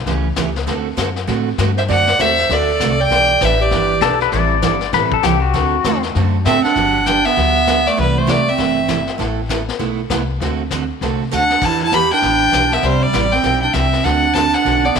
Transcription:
0.06 C#2 C#3 E3 A3 C#4 G4, brush sweep, kick, snare
0.36 C#2 C#3 E3 A3 C#4 G4, kick, snare, hi-hat pedal
0.56 snare
0.67 D2 D3 A3 C4 F#4 A4, brush sweep, kick, snare
0.97 F#2 D3 A3 C4 F#4 A4, kick, snare, hi-hat pedal
1.16 snare
1.27 A2 D3 A3 C4 F#4 A4, brush sweep, kick, snare
1.58 G2 D3 A3 C4 F#4 A4, kick, snare, hi-hat pedal
1.77 C5 E5, snare
1.88 F#2 D3 A3 C4 F#4 A4 D5 F#5, brush sweep, kick, snare
2.07 snare
2.19 E2 D3 A3 C4 F#4 A4 C5 E5, kick, snare, hi-hat pedal
2.38 snare
2.50 D2 D3 A3 C4 F#4 A4 D5, brush sweep, kick, snare
2.80 C2 D3 A3 C4 F#4 A4, kick, snare, hi-hat pedal
3.01 D5 G5
3.11 B1 E3 B3 D4 G4, brush sweep, kick, snare
3.41 A1 E3 B3 D4 G4 B4, kick, snare, hi-hat pedal
3.45 E5
3.61 G4 D5
3.71 G1 E3 B3 D4 G4, brush sweep, kick, snare
4.01 B1 E3 B3 D4 G4 A4, kick, snare, hi-hat pedal
4.20 B4, snare
4.32 A1 E3 G3 C4 E4 A4 D5, brush sweep, kick, snare
4.62 G1 E3 G3 C4 E4 A4, kick, snare, hi-hat pedal
4.81 snare
4.93 A1 E3 G3 C4 E4 A4 B4, brush sweep, kick, snare
5.12 A4, kick
5.23 C2 E3 G3 C4 E4 G4 A4, kick, snare, hi-hat pedal
5.42 F#4
5.54 D2 D3 A3 C4 F#4 A4, brush sweep, kick, snare
5.84 E2 D3 A3 C4 F#4 A4, kick, snare, hi-hat pedal
6.03 snare
6.15 F#2 D3 A3 C4 F#4 A4, brush sweep, kick, snare
6.45 A2 D3 A3 C4 F#4 A4 E5, kick, snare, hi-hat pedal
6.64 D4 F#5, muted upright bass stroke, snare
6.75 G1 D3 F#3 B3 D4 G4, brush sweep, kick, snare
7.06 D3 F#3 B3 D4 G4 G5, kick, snare, hi-hat pedal
7.25 B3 E5, snare
7.36 D2 D3 F#3 B3 D4 G4, brush sweep, kick, snare
7.67 D3 F#3 B3 D4 G4, kick, snare, hi-hat pedal
7.86 A3 D5, snare
7.97 C2 C3 E3 G3 A3 E4 G4 B4, brush sweep, kick, snare
8.18 A3 C5
8.27 C3 E3 A3 E4 G4 D5, kick, snare, hi-hat pedal
8.31 A3
8.49 C4 E5
8.57 G1 C3 E3 A3 E4 G4, brush sweep, kick, snare
8.88 C3 E3 A3 E4 G4, kick, snare, hi-hat pedal
9.07 snare
9.18 A1 A3 B3 E4 A4, brush sweep, kick, snare
9.49 A3 B3 E4 A4, kick, snare, hi-hat pedal
9.68 snare
9.79 B1 A3 B3 E4 A4, brush sweep, kick, snare
10.10 C2 A3 B3 E4 A4, kick, snare, hi-hat pedal
10.40 D2 D3 A3 C4 F#4 A4, brush sweep, kick, snare
10.71 D3 A3 C4 F#4 A4, kick, snare, hi-hat pedal
11.01 C2 D3 A3 C4 F#4 A4, brush sweep, kick, snare
11.31 D2 D3 A3 C4 D4 F#4 A4 F#5, hi-hat pedal
11.50 snare
11.62 E2 E3 B3 D4 G4 A5, brush sweep, kick, snare, crash
11.66 E4
11.79 E4, snare
11.84 A5
11.92 E3 B3 D4 G4 B5, kick, snare, hi-hat pedal
12.11 D4 G5, snare
12.22 A1 E3 B3 D4 G4, brush sweep, kick, snare
12.52 B1 E3 B3 D4 G4, kick, snare, hi-hat pedal
12.71 B3 E5, snare
12.82 C2 C3 G3 C4 E4 G4 C5, brush sweep, kick, snare
13.03 G3 D5
13.13 A1 C3 G3 C4 E4 G4, kick, snare, hi-hat pedal
13.32 C4 G5, snare
13.43 B1 C3 G3 C4 E4 G4, brush sweep, kick, snare
13.62 D4 G5
13.73 C2 C3 G3 C4 E4 G4 E5, kick, snare, hi-hat pedal
13.93 snare
14.04 D2 D3 A3 C4 D4 F#4 A4 F#5, brush sweep, kick, snare
14.34 D3 A3 C4 D4 F#4 A4 A5, kick, snare, hi-hat pedal
14.53 D4 F#5, snare
14.65 B1 D3 A3 C4 F#4 A4, brush sweep, kick, snare
14.85 B3 D5
14.95 A1 D3 A3 C4 F#4 A4 E5, kick, snare, hi-hat pedal

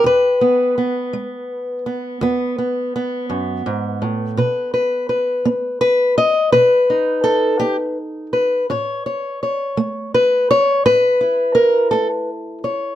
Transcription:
0.04 E2 B4
0.41 B3
0.78 B3
1.13 G#3
1.86 B3
2.21 E2 B3
2.58 B3
2.96 B3
3.30 F#2
3.66 G#2
4.02 A2
4.37 B2 B4
4.74 B4
5.09 B4
5.45 B3
5.81 B4
6.18 D#5
6.52 B2 B4
6.90 D#4
7.24 A4
7.60 B3 G4
8.33 B4
8.70 A2 C#5
9.06 C#5
9.43 C#5
9.77 A3
10.14 B4
10.51 C#5
10.86 A2 B4
11.21 E4
11.55 A#4
11.91 A3 A4
12.64 C#5

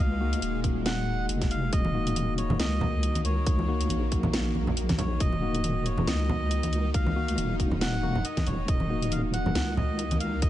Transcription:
Already playing: C#2 D#3 G#3 A#3 D#4 F#4
0.00 F5
0.21 A#3 D#4 F#4
0.33 closed hi-hat
0.42 D#1, closed hi-hat
0.64 kick, closed hi-hat
0.86 F#5, snare, closed hi-hat
1.29 F1, closed hi-hat
1.42 kick, snare, closed hi-hat
1.51 F5, closed hi-hat
1.73 D#1 D#3 A#3 D#5, kick, closed hi-hat
1.85 high conga
1.95 A#3 D#4 F#4
2.07 closed hi-hat
2.16 closed hi-hat, high conga
2.38 C#5, closed hi-hat
2.50 high conga, low conga
2.60 C#2 D#5, snare, closed hi-hat
2.81 high conga, low conga
3.03 closed hi-hat
3.15 closed hi-hat, high conga
3.25 C#5, closed hi-hat
3.47 kick, closed hi-hat
3.59 high conga
3.68 A#3 D#4 F#4
3.81 closed hi-hat
3.89 A#1, closed hi-hat, high conga
4.12 kick, closed hi-hat
4.23 high conga, low conga
4.33 snare, closed hi-hat
4.55 high conga
4.67 low conga
4.77 closed hi-hat
4.89 kick, snare, closed hi-hat, high conga
4.98 C#5, closed hi-hat, low conga
5.20 D#1 D#4 D#5, kick, closed hi-hat
5.33 high conga
5.42 A#3 D#4 F#4
5.55 closed hi-hat
5.64 closed hi-hat, high conga
5.86 C#5, closed hi-hat
5.97 high conga, low conga
6.07 C#2 D#5, snare, closed hi-hat
6.29 high conga, low conga
6.51 closed hi-hat
6.63 closed hi-hat, high conga
6.73 closed hi-hat
6.94 F5, kick, closed hi-hat
7.06 high conga
7.16 A#3 D#4 F#4
7.28 closed hi-hat
7.37 D#1, closed hi-hat, high conga
7.60 kick, closed hi-hat
7.71 high conga, low conga
7.81 F#5, snare, closed hi-hat
8.03 A#3 D#4 F#4, high conga
8.15 low conga
8.25 D#5, closed hi-hat
8.37 kick, snare, closed hi-hat, high conga
8.46 D#1 C#5, closed hi-hat, low conga
8.68 D#1 A#3 D#5, kick, closed hi-hat
8.80 high conga
8.90 A#3 D#4 F#4
9.02 closed hi-hat
9.11 F5, closed hi-hat, high conga
9.34 F#5, closed hi-hat
9.46 high conga, low conga
9.55 C#2, snare, closed hi-hat
9.77 D#5, high conga, low conga
9.99 closed hi-hat
10.11 closed hi-hat, high conga
10.20 F5, closed hi-hat
10.42 D#5, kick, closed hi-hat

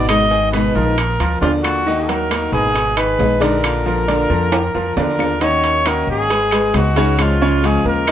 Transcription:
Already playing: G#1 B2 B3 B4
0.08 D#3 G#3 B3 D#4 G#4 D#5, high timbale, claves
0.31 D#3 D#4 G#4
0.52 B2 D#3 G#3 B3 D#4 G#4 B4, high timbale, low timbale
0.75 A#1 F3 F4 A#4
0.98 muted nylon-string guitar stroke, high timbale, claves
1.20 D2 F3 F4 A#4, high timbale
1.41 D#2 D3 A#3 D4 F4 D5, low timbale
1.63 A#3 D4 F4 F#4, high timbale, claves
1.86 D#3 A#3 D#4 F#4 D#5
2.08 F#3 F#4 A#4, high timbale
2.30 D#3 A#3 D#4 F#4, high timbale, low timbale, claves
2.52 G#1 B2 G#4 B4
2.74 muted nylon-string guitar stroke, high timbale
2.97 D#3 D#4 G#4 B4, high timbale, claves
3.19 A#1 G#3 B3 D#4 G#4, low timbale
3.40 D3 G#3 B3 D4 D#4 G#4 A#4 D5, high timbale
3.62 D3 A#3 D4 F4, high timbale, claves
3.86 F3 F4 A#4
4.08 D3 A#3 D4 F4 D5, high timbale, low timbale
4.30 F2 F3 F4 A#4
4.51 muted nylon-string guitar stroke, high timbale, claves
4.74 F2 F3 F4 A#4
4.96 D#2 D3 A#3 D4 F4 A#4 D5, low timbale
5.18 A#3 D4 F4, low timbale, claves
5.40 D#3 A#3 C#4 D#4 F#4 C#5 D#5, high timbale
5.64 high timbale
5.85 D#3 A#3 C#4 D#4 F#4 A#4 D#5, high timbale, claves
6.07 G#1 G#4
6.29 G#3 G#4 B4, muted nylon-string guitar stroke, high timbale
6.51 G#3 G#4 B4, high timbale, claves
6.73 C#2 G#3 B3 D#4 F#4 G#4, high timbale, low timbale
6.96 C#3 G#3 B3 C#4 D#4 G#4 C#5, high timbale
7.18 C#3 F3 G#3 C#4 F4, high timbale, claves
7.42 C#3 C#4 C#5
7.63 C#3 F3 G#3 C#4 F4 G#4, high timbale
7.85 D#2 A#3 A#4
8.07 D#3 D#4 D#5, muted nylon-string guitar stroke, high timbale, claves

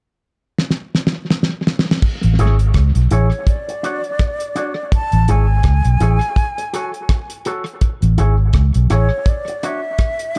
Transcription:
0.58 snare
0.71 snare
0.95 snare
1.07 snare
1.30 snare
1.43 snare
1.67 snare
1.79 snare
1.91 snare
2.02 kick, crash
2.23 A1, closed hi-hat
2.39 G#1 E4 G#4 C#5, closed hi-hat
2.59 closed hi-hat
2.74 C#2, kick, cross-stick, closed hi-hat
2.95 B1, closed hi-hat
3.11 A1 E4 G#4 C#5, closed hi-hat
3.32 closed hi-hat
3.47 D5, kick, closed hi-hat
3.68 muted clean electric guitar stroke, closed hi-hat
3.83 D4 F#4 C#5, closed hi-hat
4.04 closed hi-hat
4.19 kick, cross-stick, closed hi-hat
4.40 closed hi-hat
4.55 D4 F#4 C#5, closed hi-hat
4.92 A5, kick, closed hi-hat
5.12 A1, closed hi-hat
5.28 G#1 E4 G#4 C#5 G#5, closed hi-hat
5.63 C#2, kick, cross-stick, closed hi-hat
5.85 B1, closed hi-hat
6.00 A1 E4 G#4 C#5, closed hi-hat
6.21 closed hi-hat
6.36 kick, closed hi-hat
6.58 muted clean electric guitar stroke, closed hi-hat
6.73 F#4 A4 C#5, closed hi-hat
6.94 closed hi-hat
7.09 kick, cross-stick, closed hi-hat
7.30 closed hi-hat
7.45 F#4 A4 C#5, closed hi-hat
7.66 closed hi-hat
7.81 kick, closed hi-hat
8.02 A1, closed hi-hat
8.18 G#1 E4 G#4 C#5, closed hi-hat
8.53 C#2, kick, cross-stick, closed hi-hat
8.74 B1, closed hi-hat
8.90 A1 E4 G#4 C#5, cross-stick, closed hi-hat
9.26 D5, kick, closed hi-hat
9.48 muted clean electric guitar stroke, closed hi-hat
9.63 D4 F#4 C#5 E5, closed hi-hat
9.98 kick, cross-stick, closed hi-hat
10.19 closed hi-hat
10.35 closed hi-hat

